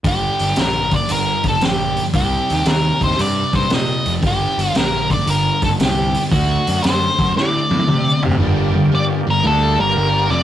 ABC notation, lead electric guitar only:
X:1
M:4/4
L:1/16
Q:"Swing" 1/4=115
K:Gm
V:1 name="Lead electric guitar"
G4 B2 d2 B2 A2 G3 z | G4 B2 c2 d2 c2 e3 z | G4 B2 d2 B2 A2 G3 z | ^F4 c4 d6 z2 |
z4 d2 B2 A2 B4 d2 |]